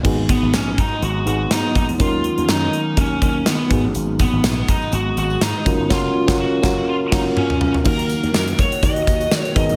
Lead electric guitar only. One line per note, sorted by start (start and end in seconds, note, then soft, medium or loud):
0.30 0.52 B3 medium
0.55 0.79 C#4 medium
0.79 1.04 D#4 medium
1.04 1.26 F#4 loud
1.28 1.52 F#4 loud
1.53 1.75 D#4 medium
1.77 1.83 D#4 medium
2.01 2.50 F4 loud
2.50 2.99 D#4 medium
2.99 3.22 C#4 medium
3.23 3.47 C#4 medium
3.48 3.82 B3 medium
4.21 4.70 B3 medium
4.69 4.94 D#4 medium
4.94 5.17 F#4 loud
5.19 5.42 F#4 loud
5.42 5.92 D#4 loud
5.92 6.36 F4 medium
6.40 6.85 F#4 loud
6.89 6.96 F4 medium
7.14 7.20 D#4 medium
7.38 7.72 C#4 medium
7.87 8.62 A#4 medium
8.60 8.84 C#5 medium
8.84 9.39 D#5 medium
9.39 9.56 C#5 medium
9.57 9.76 D#5 loud